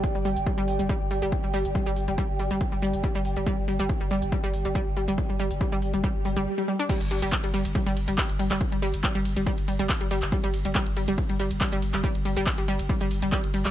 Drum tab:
CC |----------------|----------------|----------------|----------------|
RD |----------------|----------------|----------------|----------------|
HH |x-oxx-oxx-oxx-ox|x-oxx-oxx-oxx-ox|x-oxx-oxx-oxx-ox|x-oxx-oxx-ox----|
CP |----------------|----------------|----------------|----------------|
BD |o---o---o---o---|o---o---o---o---|o---o---o---o---|o---o---o-------|

CC |x---------------|----------------|----------------|----------------|
RD |xxxxxxxxxxxxxxxx|xxxxxxxxxxxxxxxx|xxxxxxxxxxxxxxxx|xxxxxxxxxxxxxxxx|
HH |x-oxx-oxx-oxx-ox|x-oxx-oxxooxx-ox|x-oxx-oxx-oxx-ox|x-oxx-oxxooxx-ox|
CP |----x-------x--x|----x-------x--x|----x-------x--x|----x-------x--x|
BD |o---o---o---o---|o---o---o---o---|o---o---o---o---|o---o---o---o---|